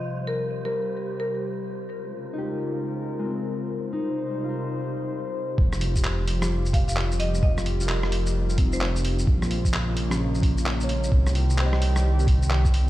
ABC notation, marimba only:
X:1
M:4/4
L:1/16
Q:"Swing 16ths" 1/4=130
K:Fm
V:1 name="Marimba"
z2 B2 z B4- B B3 z3 | z16 | z16 | z8 z2 f f z2 e2 |
e2 z8 z c c z3 | z16 | z16 |]